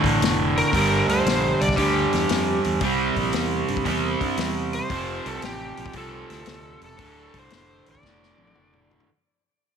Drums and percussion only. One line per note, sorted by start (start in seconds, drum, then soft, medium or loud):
0.04 kick medium
0.04 open hi-hat soft
0.22 snare loud
0.22 open hi-hat medium
0.57 open hi-hat soft
0.73 kick loud
0.73 open hi-hat medium
1.09 open hi-hat soft
1.26 snare loud
1.26 open hi-hat medium
1.61 open hi-hat soft
1.69 kick medium
1.69 snare soft
1.77 kick medium
1.77 open hi-hat medium
2.13 snare soft
2.13 open hi-hat soft
2.29 snare medium
2.29 open hi-hat medium
2.64 open hi-hat soft
2.81 kick loud
2.81 open hi-hat medium
3.16 kick medium
3.16 open hi-hat soft
3.33 snare loud
3.33 open hi-hat medium
3.68 open hi-hat soft
3.77 kick medium
3.85 kick medium
3.85 open hi-hat medium
4.21 kick medium
4.21 open hi-hat soft
4.37 snare medium
4.37 open hi-hat medium
4.73 open hi-hat soft
4.90 kick loud
4.90 open hi-hat medium
5.26 open hi-hat soft
5.42 snare loud
5.42 open hi-hat medium
5.77 open hi-hat soft
5.86 kick medium
5.93 kick medium
5.93 open hi-hat medium
6.30 snare soft
6.30 open hi-hat soft
6.46 snare loud
6.46 open hi-hat medium
6.81 open hi-hat soft
6.99 kick loud
6.99 open hi-hat medium
7.34 kick medium
7.34 open hi-hat soft
7.50 snare loud
7.50 open hi-hat medium
7.86 open hi-hat soft
7.95 kick medium
8.03 kick medium
8.03 snare medium
8.23 snare soft
8.38 high tom medium
8.47 high tom medium
8.55 mid tom medium
8.74 mid tom medium
8.91 floor tom medium
9.00 floor tom medium